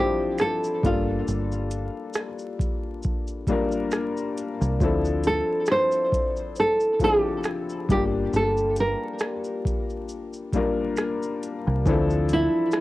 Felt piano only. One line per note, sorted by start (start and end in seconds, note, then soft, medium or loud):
0.00 0.83 F3 medium
0.00 0.83 C4 medium
0.00 0.83 D4 medium
0.00 0.84 E4 medium
0.00 0.85 C5 medium
0.83 2.25 G3 medium
0.83 2.26 A#3 medium
0.83 2.26 D4 medium
0.83 2.27 F4 medium
0.83 2.27 A4 medium
3.48 4.48 G3 medium
3.48 4.49 A#3 medium
3.48 4.49 D4 medium
3.48 4.50 F4 medium
3.48 4.50 A#4 loud
4.80 6.12 F3 medium
4.80 6.13 C4 medium
4.80 6.13 D4 medium
4.80 6.14 E4 medium
4.80 6.14 A4 medium
7.01 7.89 F3 medium
7.01 7.90 C4 medium
7.01 7.89 D4 medium
7.01 7.90 E4 medium
7.01 7.91 A4 medium
7.88 9.31 G3 medium
7.88 9.32 A#3 medium
7.88 9.32 D4 medium
7.88 9.32 F4 medium
7.88 9.33 G4 medium
10.53 11.54 G3 medium
10.53 11.54 A#3 medium
10.53 11.55 D4 medium
10.53 11.55 F4 medium
10.53 11.56 A#4 loud
11.86 11.93 E3 medium
11.86 12.81 C4 medium
11.86 12.81 D4 medium
11.86 12.81 E4 medium
11.86 12.81 A4 loud
11.92 12.81 F3 medium